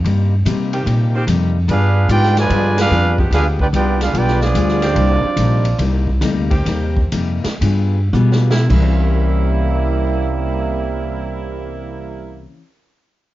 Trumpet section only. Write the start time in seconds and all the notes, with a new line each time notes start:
1.70 D4 G#4 B4 F5
2.11 F4 B4 D5 G5
2.39 F4 B4 D5 G#5
2.79 D4 G#4 B4 F5
3.34 D4 G#4 B4 F5
3.61 F4 B4 D5 G5
3.75 F4 B4 D5 G5
4.03 D4 G#4 B4 F5
4.17 F4 B4 D5 G5
4.42 B3 F4 G#4 D5